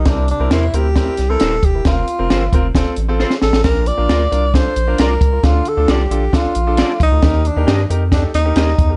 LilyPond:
<<
  \new Staff \with { instrumentName = "Clean electric guitar" } { \time 4/4 \key bes \major \tempo 4 = 134 r4 <e' bes' c''>8 r4. <e' bes' c''>8 r8 | r4 <f' bes' c''>8 r4. <f' a' c''>8 r8 | r4 <f' bes' d''>8 r4. <f' bes' d''>8 r8 | r4 <f' a' d''>8 r4. <f' a' d''>8 r8 |
r4 <g' bes' ees''>8 r4. <g' bes' ees''>8 r8 | }
  \new Staff \with { instrumentName = "Tenor saxophone" } { \time 4/4 \key bes \major d'8 d'8 e'8 g'4~ g'16 a'8. g'8 | f'2 r4. a'8 | bes'8 d''4. c''4 bes'4 | f'8 a'8 g'4 f'4. ees'8~ |
ees'8 d'4 r8 d'8 ees'4. | }
  \new Staff \with { instrumentName = "Grand piano" } { \time 4/4 \key bes \major <c' e' bes'>8 r16 <c' e' bes'>8 r16 <c' e' bes'>16 r16 <c' e' bes'>8 r16 <c' e' bes'>8 r8 <e' bes'>16 | <c' f' bes'>8 r16 <c' f' bes'>8 r16 <c' f' bes'>16 r16 <c' f' a'>8 r16 <c' f' a'>8 r8 <f' a'>16 | <d' f' bes'>8 r16 <d' f' bes'>8 r16 <d' f' bes'>16 r16 <d' f' a'>8 r16 <d' f' bes'>8 r8 <f' bes'>16 | <d' f' a'>8 r16 <d' f' a'>8 r16 <d' f' a'>16 r16 <d' f' a'>8 r16 <d' f' a'>8 r8 <f' a'>16 |
<ees' g' bes'>8 r16 <ees' g' bes'>8 r16 <ees' g' bes'>16 r16 <ees' g' a'>8 r16 <ees' g' bes'>8 r8 <g' bes'>16 | }
  \new Staff \with { instrumentName = "Grand piano" } { \clef bass \time 4/4 \key bes \major c4. r2 r8 | r1 | bes,4. r2 r8 | d4. r2 r8 |
ees4. r2 r8 | }
  \new Staff \with { instrumentName = "Analog synth bass" } { \clef bass \time 4/4 \key bes \major c,8. c,16 e,8 d,4 c,8 ees,,8 e,,8 | f,,8 r16 f,,16 g,,8 f,,8 f,,16 a,,16 a,,8. r16 a,,16 a,,16 | bes,,8. bes,,16 d,8 c,4 bes,,8 c,8 des,8 | d,8 r16 d,16 c,8 bes,,8 r16 bes,,16 bes,,8. r16 c,16 d,16 |
ees,8. ees,16 g,8 f,4 ees,8 ees,8 e,8 | }
  \new DrumStaff \with { instrumentName = "Drums" } \drummode { \time 4/4 <hh bd sn>8 hh8 <hh sn>8 hh8 <hh bd sn>8 <hh sn>8 <hh sn>8 <hh bd>8 | <hh bd sn>8 hh8 <hh sn>8 <hh bd>8 <hh bd sn>8 hh8 sn16 sn16 sn16 sn16 | <hh bd sn>8 hh8 <hh sn>8 hh8 <hh bd sn>8 hh8 <hh sn>8 <hh bd>8 | <hh bd sn>8 hh8 <hh sn>8 hh8 <hh bd sn>8 hh8 <hh sn>8 <hh bd>8 |
<hh bd sn>8 hh8 <hh sn>8 hh8 <hh bd sn>8 <hh sn>8 <hh sn>8 <hh bd>8 | }
>>